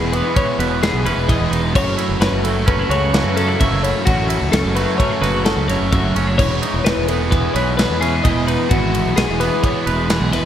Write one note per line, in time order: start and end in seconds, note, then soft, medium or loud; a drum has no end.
0.00 0.21 E1 medium
0.00 1.27 E2 medium
0.00 0.12 E3 medium
0.00 0.34 E3 medium
0.00 0.14 G#3 medium
0.00 0.13 B3 medium
0.00 0.12 E4 medium
0.00 0.13 G#4 medium
0.12 2.43 E3 medium
0.12 0.35 G#3 medium
0.12 1.73 B3 medium
0.12 0.36 B3 medium
0.12 0.38 E4 medium
0.12 0.36 B4 medium
0.12 ride medium
0.34 0.80 E3 medium
0.34 0.81 G#3 medium
0.34 0.82 B3 medium
0.34 0.47 C#4 medium
0.34 0.59 C#5 medium
0.34 kick loud
0.34 ride medium
0.39 0.84 E4 loud
0.59 0.90 E1 medium
0.59 1.75 B2 medium
0.59 0.82 B4 medium
0.59 1.73 B4 medium
0.59 ride medium
0.81 1.28 E3 medium
0.81 1.07 G#3 medium
0.81 1.05 B3 medium
0.81 1.04 E4 medium
0.81 1.06 G#4 medium
0.81 snare loud
0.81 ride medium
0.94 1.04 B1 medium
1.04 1.16 E1 loud
1.04 1.28 G#3 medium
1.04 1.29 B3 medium
1.04 1.17 C#4 medium
1.04 1.31 E4 medium
1.04 1.29 B4 medium
1.04 ride medium
1.16 1.37 E1 medium
1.28 1.73 E2 medium
1.28 1.74 E3 medium
1.28 1.74 G#3 medium
1.28 1.75 B3 loud
1.28 1.77 E4 loud
1.28 1.52 D#5 medium
1.28 kick loud
1.28 ride medium
1.39 1.50 E1 medium
1.51 1.75 E1 medium
1.51 1.72 D#4 medium
1.51 1.75 B4 medium
1.51 ride medium
1.73 1.95 F#1 medium
1.73 3.59 F#2 medium
1.73 2.20 F#3 medium
1.73 2.21 A3 medium
1.73 2.22 C#4 medium
1.73 2.21 C#5 medium
1.73 kick loud
1.73 crash medium
1.78 2.24 F#4 loud
1.97 2.65 E4 medium
1.97 ride medium
2.09 2.20 F#1 medium
2.20 2.31 F#1 medium
2.20 2.66 F#3 medium
2.20 2.47 A3 medium
2.20 2.45 C#4 medium
2.20 2.43 F#4 medium
2.20 2.44 B4 medium
2.20 snare loud
2.20 ride medium
2.32 2.83 F#1 medium
2.43 4.04 F#3 medium
2.43 4.74 A3 medium
2.43 2.67 A3 medium
2.43 2.69 C#4 medium
2.43 2.70 F#4 medium
2.43 2.67 A4 medium
2.43 ride medium
2.66 3.11 F#3 medium
2.66 3.12 A3 medium
2.66 2.79 C#4 medium
2.66 3.13 C#4 medium
2.66 2.90 B4 medium
2.66 kick loud
2.66 ride medium
2.70 3.14 F#4 medium
2.79 3.35 E4 medium
2.89 3.21 C#2 medium
2.89 4.03 C#3 medium
2.89 5.21 F#4 medium
2.89 3.14 C#5 medium
2.89 ride medium
3.12 3.58 F#3 medium
3.12 3.39 A3 medium
3.12 3.37 C#4 medium
3.12 3.35 F#4 medium
3.12 3.37 B4 medium
3.12 snare loud
3.12 ride medium
3.24 3.55 F#2 medium
3.36 3.48 C#4 medium
3.36 3.60 C#4 medium
3.36 3.61 F#4 medium
3.36 3.60 A4 medium
3.36 ride medium
3.40 3.59 A3 medium
3.48 3.83 E4 medium
3.59 3.71 F#1 medium
3.59 4.04 F#2 medium
3.59 4.04 F#3 medium
3.59 4.05 A3 medium
3.59 4.06 C#4 medium
3.59 4.07 F#4 loud
3.59 3.83 E5 medium
3.59 kick loud
3.59 ride loud
3.71 3.92 F#1 medium
3.83 4.08 E4 medium
3.83 4.07 C#5 medium
3.83 ride medium
4.05 4.38 A1 medium
4.05 5.91 F#2 medium
4.05 4.50 F#3 medium
4.05 4.52 A3 medium
4.05 4.53 C#4 medium
4.05 4.52 F#4 medium
4.05 4.54 F#4 loud
4.05 kick loud
4.05 ride medium
4.29 4.99 E4 medium
4.29 ride medium
4.41 4.52 C#2 medium
4.52 4.63 C#2 medium
4.52 4.98 F#3 medium
4.52 4.78 A3 medium
4.52 4.77 C#4 medium
4.52 4.75 F#4 medium
4.52 4.76 A4 medium
4.52 snare loud
4.52 ride loud
4.64 4.85 F#1 medium
4.75 6.35 F#3 medium
4.75 6.38 A3 medium
4.75 4.99 A3 medium
4.75 5.00 C#4 medium
4.75 5.01 F#4 medium
4.75 4.97 B4 medium
4.75 ride medium
4.98 5.44 F#3 medium
4.98 5.45 A3 medium
4.98 5.11 C#4 medium
4.98 5.46 C#4 medium
4.98 5.21 C#5 medium
4.98 kick loud
4.98 ride medium
5.02 5.47 F#4 medium
5.11 5.69 E4 medium
5.21 5.53 F#1 medium
5.21 6.35 C#3 medium
5.21 6.38 F#4 medium
5.21 5.45 B4 medium
5.21 snare soft
5.21 ride medium
5.45 5.90 F#3 medium
5.45 5.71 A3 medium
5.45 5.70 C#4 medium
5.45 5.67 F#4 medium
5.45 5.68 A4 medium
5.45 snare loud
5.45 ride loud
5.57 5.67 C#2 medium
5.68 5.79 F#1 loud
5.68 5.93 C#4 medium
5.68 6.16 E4 medium
5.68 5.94 F#4 medium
5.68 5.92 C#5 medium
5.68 snare soft
5.68 ride medium
5.72 5.92 A3 medium
5.81 6.01 F#1 medium
5.91 6.36 F#2 medium
5.91 6.37 F#3 medium
5.91 6.38 A3 medium
5.91 6.38 C#4 loud
5.91 6.39 F#4 loud
5.91 6.15 E5 medium
5.91 kick loud
5.91 ride loud
6.04 6.14 F#1 medium
6.15 6.39 F#1 loud
6.15 6.27 C#4 medium
6.15 6.37 C#5 medium
6.15 ride medium
6.27 6.39 E4 medium
6.38 6.59 E1 loud
6.38 8.24 E2 medium
6.38 6.84 E3 medium
6.38 6.86 G#3 loud
6.38 6.87 B3 medium
6.38 6.88 E4 loud
6.38 6.85 C#5 medium
6.38 kick loud
6.38 crash medium
6.62 8.01 D#4 medium
6.62 ride medium
6.74 6.84 E1 medium
6.84 6.95 E1 medium
6.84 7.30 E3 medium
6.84 7.11 G#3 medium
6.84 7.09 B3 medium
6.84 7.08 E4 medium
6.84 7.08 B4 medium
6.84 snare loud
6.84 ride loud
6.97 7.48 E1 medium
7.08 9.38 E3 medium
7.08 7.32 G#3 medium
7.08 9.40 B3 medium
7.08 7.33 B3 medium
7.08 7.34 E4 medium
7.08 7.32 A4 medium
7.08 ride medium
7.31 7.77 E3 medium
7.31 7.78 G#3 medium
7.31 7.79 B3 medium
7.31 7.80 E4 loud
7.31 7.54 B4 medium
7.31 kick loud
7.31 ride medium
7.54 7.85 B1 medium
7.54 8.71 B2 medium
7.54 9.86 B4 medium
7.54 7.77 C#5 medium
7.54 ride medium
7.77 8.24 E3 medium
7.77 8.04 G#3 medium
7.77 8.03 B3 medium
7.77 8.01 E4 medium
7.77 8.01 B4 medium
7.77 snare loud
7.77 ride loud
7.90 8.20 E2 medium
8.01 8.26 B3 medium
8.01 8.13 C#4 medium
8.01 8.27 E4 medium
8.01 8.24 G#4 medium
8.01 ride medium
8.05 8.25 G#3 medium
8.24 8.34 E1 loud
8.24 8.70 E2 medium
8.24 8.69 E3 medium
8.24 8.70 G#3 loud
8.24 8.71 B3 loud
8.24 8.72 E4 loud
8.24 8.47 D#5 medium
8.24 kick loud
8.24 ride loud
8.35 8.56 E1 medium
8.47 8.73 D#4 medium
8.47 8.71 B4 medium
8.47 ride medium
8.69 9.01 G#1 medium
8.69 10.45 E2 medium
8.69 9.15 E3 loud
8.69 9.17 G#3 medium
8.69 9.17 B3 loud
8.69 9.19 E4 loud
8.69 9.16 F#4 medium
8.69 kick loud
8.69 ride loud
8.95 ride medium
9.06 9.16 B1 medium
9.16 9.27 B1 medium
9.16 9.61 E3 medium
9.16 9.42 G#3 medium
9.16 9.40 B3 medium
9.16 9.38 E4 medium
9.16 9.40 G#4 medium
9.16 snare loud
9.16 ride loud
9.28 9.49 E1 medium
9.39 10.45 E3 medium
9.39 9.63 G#3 medium
9.39 10.45 B3 medium
9.39 9.63 B3 medium
9.39 9.65 E4 medium
9.39 9.63 B4 medium
9.39 snare soft
9.39 ride medium
9.62 10.08 E3 medium
9.62 10.10 G#3 loud
9.62 10.11 B3 medium
9.62 10.11 E4 medium
9.62 9.86 C#5 medium
9.62 kick loud
9.62 ride medium
9.86 10.17 E1 medium
9.86 10.45 B2 medium
9.86 10.09 B4 medium
9.86 10.45 B4 medium
9.86 ride medium
10.09 10.45 E3 medium
10.09 10.35 G#3 medium
10.09 10.33 B3 medium
10.09 10.31 E4 medium
10.09 10.33 G#4 medium
10.09 snare loud
10.09 ride medium
10.20 10.31 B1 medium
10.31 10.42 E1 loud
10.31 10.45 B3 medium
10.31 10.45 E4 medium
10.31 10.45 B4 medium
10.31 snare soft
10.31 ride medium
10.36 10.45 G#3 medium